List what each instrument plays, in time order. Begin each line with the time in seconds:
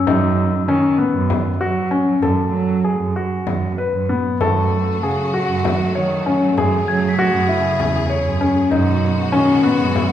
Already playing: glockenspiel E6
0.07 cello F#2, grand piano D#4, frame drum
0.68 cello D#3, grand piano C#4
0.98 grand piano B3
1.14 cello F#2
1.30 frame drum
1.61 cello F#3, grand piano F#4
1.91 grand piano C#4
2.07 cello F#3
2.22 cello F#2, grand piano A4, frame drum
2.53 cello F#3
2.85 grand piano G#4
2.99 cello F#2
3.16 grand piano F#4
3.46 cello F#2, frame drum
3.78 grand piano B4, frame drum
3.93 cello F#2
4.09 grand piano B3
4.40 cello F#2, string section F#3 A3 F#4, grand piano A4, glockenspiel C#6, frame drum
5.03 cello C#3, grand piano G#4
5.34 grand piano F#4
5.49 cello F#2
5.65 frame drum
5.95 cello D#3, grand piano C#5
6.26 grand piano C#4
6.42 cello F#3
6.57 cello F#2, string section C#3 G#4, grand piano G#4, frame drum
6.87 cello F#3, glockenspiel G#6
7.09 glockenspiel B6
7.19 grand piano F#4
7.33 cello F#2
7.49 grand piano E4
7.80 cello E2, frame drum
8.10 grand piano C#5
8.25 cello F#2
8.41 grand piano C#4
8.71 cello F#2, string section B2 G#3 F#4, grand piano D#4, frame drum
9.32 cello D#3, grand piano C#4
9.63 grand piano B3
9.79 cello F#2
9.95 frame drum